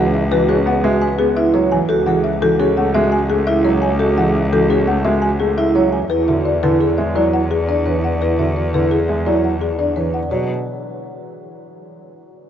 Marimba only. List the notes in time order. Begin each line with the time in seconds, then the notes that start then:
Already playing: F#5
0.14 E5
0.32 B4
0.49 G#4
0.67 F#5
0.84 E5
1.02 G#5
1.19 G#4
1.37 E5
1.54 C#5
1.72 G#5
1.89 A4
2.06 F#5
2.24 E5
2.42 A4
2.60 G#4
2.77 F#5
2.95 E5
3.12 G#5
3.30 G#4
3.47 E5
3.65 C#5
3.82 G#5
3.99 A4
4.18 F#5
4.35 E5
4.53 A4
4.70 G#4
4.88 F#5
5.05 E5
5.22 G#5
5.40 G#4
5.58 E5
5.75 C#5
5.93 G#5
6.10 B4
6.28 E5
6.45 D5
6.63 B4
6.81 G#4
6.98 E5
7.16 D5
7.33 F#5
7.51 G#4
7.69 D5
7.86 C#5
8.04 F#5
8.22 B4
8.39 E5
8.56 D5
8.74 B4
8.91 G#4
9.09 E5
9.26 D5
9.44 F#5
9.61 G#4
9.79 D5
9.96 C#5
10.14 F#5
10.31 C#5